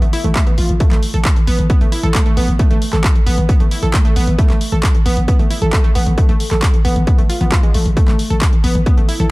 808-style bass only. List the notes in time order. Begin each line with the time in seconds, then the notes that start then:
0.02 A1
0.24 A1
0.58 A1
0.69 A1
0.92 A1
1.14 A1
1.48 A1
1.59 A1
1.81 A1
2.03 A1
2.37 A1
2.48 A1
2.71 A1
2.93 A1
3.27 A1
3.38 A1
3.60 A1
3.83 A1
4.16 A1
4.27 A1
4.50 A1
4.72 A1
5.06 A1
5.17 A1
5.39 A1
5.62 A1
5.95 A1
6.07 A1
6.29 A1
6.51 A1
6.85 A1
6.96 A1
7.18 A1
7.41 A1
7.74 A1
7.86 A1
8.08 A1
8.30 A1
8.64 A1
8.75 A1
8.97 A1
9.20 A1